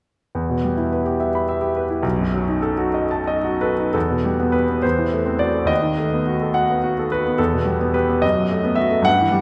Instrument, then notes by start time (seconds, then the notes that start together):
grand piano
0.35 E2
0.49 B2
0.64 G3
0.77 E4
0.92 B4
1.06 G4
1.20 E5
1.35 B5
1.49 E5
1.61 G4
1.77 B4
1.90 E4
2.03 B1
2.19 F#2
2.34 F#3
2.48 D#4
2.62 A4
2.78 F#4
2.94 D#5
3.11 A5
3.27 D#5
3.44 F#4
3.61 A4 B4
3.79 D#4
3.93 E2 A4
4.10 B2
4.25 G3
4.40 B3
4.52 G4 B4
4.69 B3
4.82 E2 C5
4.98 E3
5.12 A3
5.25 C4
5.39 F#4 D5
5.54 A4
5.65 D#2 D#5
5.82 D#3
5.98 A3
6.13 B3
6.27 F#4
6.42 A4
6.54 F#4 F#5
6.70 B3
6.84 F#4
6.99 A4
7.12 F#4 B4
7.25 B3
7.38 E2 A4
7.53 B2
7.65 G3
7.81 B3
7.94 G4 B4
8.09 B3
8.22 F#2 D#5
8.35 F#3
8.51 A3
8.64 B3
8.75 F#4 E5
8.91 A4
9.02 G2 F#5
9.21 E3
9.32 G3